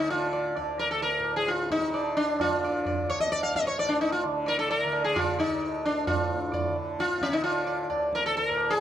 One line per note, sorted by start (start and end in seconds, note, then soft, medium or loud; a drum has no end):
0.00 0.57 D2 medium
0.00 1.18 A2 soft
0.00 1.79 D3 medium
0.10 0.53 F4 medium
0.10 tabla na medium
0.33 0.55 D5 soft
0.33 tabla na medium
0.56 3.00 D2 medium
0.56 0.78 D5 soft
0.56 tabla na medium
0.79 0.90 A#4 medium
0.79 tabla te medium
0.91 1.02 A4 medium
1.01 1.36 A#4 medium
1.01 tabla tin medium
1.19 3.62 A2 medium
1.25 tabla na medium
1.36 1.49 G#4 medium
1.47 1.71 F4 medium
1.47 tabla te medium
1.59 tabla te medium
1.71 2.16 D#4 medium
1.71 tabla ke medium
1.79 2.39 D3 medium
1.79 tabla te medium
1.94 2.16 D5 soft
1.94 tabla na medium
2.17 2.41 D4 medium
2.17 tabla na medium
2.39 4.25 D3 medium
2.39 3.12 F4 medium
2.39 tabla na medium
2.39 tabla ge medium
2.63 2.85 D5 soft
2.63 tabla te medium
2.86 3.08 D5 soft
2.86 tabla tin medium
2.86 tabla ge medium
3.01 5.46 D2 medium
3.09 3.20 C#5 medium
3.09 tabla na medium
3.20 3.31 D#5 medium
3.20 tabla ke medium
3.32 3.43 D5 medium
3.32 tabla na medium
3.43 3.55 F5 medium
3.56 3.67 D#5 medium
3.56 tabla ke medium
3.62 6.06 A2 medium
3.67 3.79 C#5 medium
3.78 3.91 D5 medium
3.78 tabla na medium
3.89 4.01 D4 medium
4.01 4.12 D#4 medium
4.01 tabla na medium
4.12 4.23 F4 medium
4.24 4.85 D3 medium
4.24 tabla na medium
4.46 4.59 A#4 medium
4.46 4.68 D5 soft
4.46 tabla te medium
4.59 4.70 A4 medium
4.69 5.04 A#4 medium
4.69 4.91 D5 soft
4.69 tabla tin medium
4.85 6.69 D3 medium
4.92 5.14 D5 soft
4.92 tabla na medium
5.04 5.16 G#4 medium
5.15 5.39 F4 medium
5.15 5.37 D5 soft
5.15 tabla na medium
5.15 tabla ge medium
5.38 5.85 D#4 medium
5.38 5.60 D5 soft
5.38 tabla te medium
5.47 7.89 D2 medium
5.62 tabla na medium
5.84 6.07 D4 medium
5.84 tabla na medium
6.07 8.50 A2 medium
6.07 6.72 F4 medium
6.07 tabla na medium
6.07 tabla ge medium
6.31 tabla te medium
6.53 6.75 D5 soft
6.53 tabla tin medium
6.53 tabla ge medium
6.69 7.28 D3 medium
6.76 tabla na medium
6.99 7.23 F4 medium
6.99 tabla te medium
7.10 tabla te medium
7.22 7.34 C#4 medium
7.22 tabla ke medium
7.28 8.80 D3 medium
7.33 7.43 D#4 medium
7.33 tabla te medium
7.44 7.87 F4 medium
7.44 tabla na medium
7.67 7.88 D5 soft
7.67 tabla na medium
7.89 8.80 D2 medium
7.89 8.11 D5 soft
7.89 tabla na medium
8.13 8.26 A#4 medium
8.13 tabla ke medium
8.23 8.36 A4 medium
8.23 tabla te medium
8.35 8.71 A#4 medium
8.35 tabla tin medium
8.51 8.80 A2 medium
8.57 tabla na medium
8.70 8.80 G#4 medium